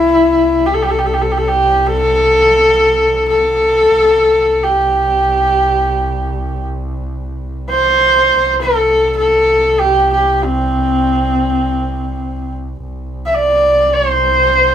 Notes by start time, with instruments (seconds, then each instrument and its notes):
Already playing: double bass C2, horsehead fiddle E4
0.66 horsehead fiddle G4
0.74 horsehead fiddle A4
0.82 horsehead fiddle G4
0.90 horsehead fiddle A4
0.98 horsehead fiddle G4
1.06 horsehead fiddle A4
1.13 horsehead fiddle G4
1.22 horsehead fiddle A4
1.32 horsehead fiddle G4
1.38 horsehead fiddle A4
1.48 horsehead fiddle G4
1.86 horsehead fiddle A4
3.28 horsehead fiddle A4
3.95 double bass C2
4.63 horsehead fiddle G4
7.69 horsehead fiddle C5
8.39 double bass C2
8.61 horsehead fiddle A4
9.17 horsehead fiddle A4
9.79 horsehead fiddle G4
10.13 horsehead fiddle G4
10.43 horsehead fiddle C4
12.83 double bass C2
13.26 horsehead fiddle E5
13.34 horsehead fiddle D5
13.94 horsehead fiddle C5